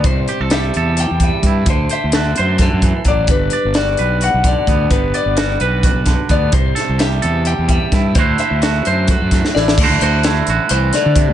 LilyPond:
<<
  \new Staff \with { instrumentName = "Clean electric guitar" } { \time 7/8 \key d \mixolydian \tempo 4 = 130 c''4 e''4 g''8 e''4 | c''8 e''4 c''8 a'4 d''8 | b'4 d''4 fis''8 d''4 | b'8 d''4 b'8 r4 d''8 |
c''4 e''4 g''8 e''4 | c''8 e''4 c''8 a'4 d''8 | r8 c''8 r4 c''8 d''4 | }
  \new Staff \with { instrumentName = "Clean electric guitar" } { \time 7/8 \key d \mixolydian << { r8 g'16 a'16 g'8 a'8 g'4 e'8 | r8 c''8 fis'8 c''2 | r8 d''8 fis'8 b'8 fis'4 b8~ | b8 d''8 fis'8 b'8 fis'4 b8 |
r8 a'8 g'8 a'8 g'4 e'8 | <a e' fis' c''>8 c''8 fis'8 c''8 fis'4 e'8 | <a e' fis' c''>8 fis'8 e'8 fis'2 | } \\ { <c g>4 g4. g4 | d4 a4 d8 e8 fis8 | g,4 g4. d4 | g,4 g4. d4 |
c4 g4. g4 | d4 a4. a,4 | d4 a4 e8 d8 c8 | } >> }
  \new Staff \with { instrumentName = "Fingered electric bass" } { \clef bass \time 7/8 \key d \mixolydian c,8 r16 c,8. e,8. e,8 r16 g,8 | d,8 r16 d,8. fis,8. fis,8 r16 a,,8 | g,,8 r16 g,,8. b,,8. b,,8 r16 d,8 | g,,8 r16 g,,8. b,,8. b,,8 r16 d,8 |
c,8 r16 c,8. e,8. e,8 r16 g,8 | d,8 r16 d,8. fis,8. fis,8 r16 a,,8 | d,16 d,16 d,4 a,,16 r16 c,8 r16 d8 d,16 | }
  \new DrumStaff \with { instrumentName = "Drums" } \drummode { \time 7/8 <hh bd>8 hh8 <hh sn>8 hh8 hh8 <hh bd>8 <hh bd>8 | <hh bd>8 hh8 <hh sn>8 hh8 <hh bd sn>8 <hh bd>8 <hh bd>8 | <hh bd>8 hh8 <hh sn>8 hh8 hh8 <hh bd>8 <hh bd>8 | <hh bd>8 hh8 <hh sn>8 hh8 <hh bd>8 <hh bd sn>8 <hh bd>8 |
<hh bd>8 <hh sn>8 <hh sn>8 hh8 hh8 <hh bd>8 <hh bd sn>8 | <hh bd>8 hh8 <hh sn>8 hh8 <hh bd>8 <hh bd sn>16 sn16 sn16 sn16 | <cymc bd>8 hh8 <hh sn>8 hh8 hh8 <hh sn>8 <hh bd>8 | }
>>